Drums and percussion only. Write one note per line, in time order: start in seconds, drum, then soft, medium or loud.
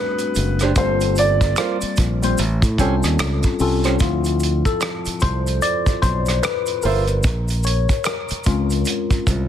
0.19 closed hi-hat soft
0.19 maracas soft
0.35 closed hi-hat medium
0.35 maracas soft
0.59 cross-stick soft
0.59 closed hi-hat soft
0.59 maracas soft
0.76 kick loud
0.76 closed hi-hat medium
0.76 maracas medium
1.00 closed hi-hat soft
1.00 maracas soft
1.16 closed hi-hat medium
1.16 maracas soft
1.41 kick medium
1.41 closed hi-hat soft
1.41 maracas soft
1.56 finger snap medium
1.56 cross-stick medium
1.56 closed hi-hat medium
1.56 maracas medium
1.81 closed hi-hat soft
1.81 maracas soft
1.96 kick medium
1.96 closed hi-hat medium
1.96 maracas soft
2.23 closed hi-hat soft
2.23 maracas soft
2.38 closed hi-hat medium
2.38 maracas medium
2.62 kick loud
2.62 closed hi-hat medium
2.62 maracas soft
2.78 kick medium
2.78 closed hi-hat medium
2.78 maracas soft
3.03 cross-stick soft
3.03 closed hi-hat soft
3.03 maracas soft
3.19 finger snap medium
3.19 cross-stick loud
3.19 closed hi-hat medium
3.19 maracas medium
3.43 kick medium
3.43 closed hi-hat soft
3.43 maracas soft
3.59 open hi-hat soft
3.59 maracas medium
3.84 cross-stick soft
3.84 closed hi-hat soft
3.84 maracas soft
3.99 kick loud
3.99 closed hi-hat medium
3.99 maracas medium
4.24 closed hi-hat soft
4.24 maracas soft
4.40 closed hi-hat medium
4.40 maracas soft
4.65 kick medium
4.65 closed hi-hat soft
4.65 maracas soft
4.81 finger snap medium
4.81 cross-stick loud
4.81 closed hi-hat medium
4.81 maracas medium
5.05 closed hi-hat soft
5.05 maracas soft
5.20 kick medium
5.20 closed hi-hat medium
5.20 maracas soft
5.47 closed hi-hat soft
5.47 maracas soft
5.62 closed hi-hat medium
5.62 maracas medium
5.86 kick medium
5.86 closed hi-hat soft
5.86 maracas soft
6.03 kick medium
6.03 closed hi-hat medium
6.03 maracas soft
6.26 cross-stick soft
6.26 closed hi-hat soft
6.26 maracas soft
6.43 finger snap medium
6.43 cross-stick loud
6.43 closed hi-hat medium
6.43 maracas medium
6.66 closed hi-hat soft
6.66 maracas soft
6.82 open hi-hat soft
6.82 maracas medium
7.08 closed hi-hat soft
7.08 maracas soft
7.23 kick loud
7.23 closed hi-hat medium
7.23 maracas medium
7.48 closed hi-hat soft
7.48 maracas soft
7.63 closed hi-hat medium
7.63 maracas soft
7.89 kick medium
7.89 closed hi-hat soft
7.89 maracas soft
8.04 finger snap medium
8.04 cross-stick medium
8.04 closed hi-hat medium
8.04 maracas medium
8.29 closed hi-hat soft
8.29 maracas soft
8.44 kick medium
8.44 closed hi-hat medium
8.44 maracas soft
8.70 closed hi-hat soft
8.70 maracas soft
8.85 closed hi-hat medium
8.85 maracas medium
9.11 kick medium
9.11 closed hi-hat soft
9.11 maracas soft
9.27 kick medium
9.27 closed hi-hat soft
9.27 maracas soft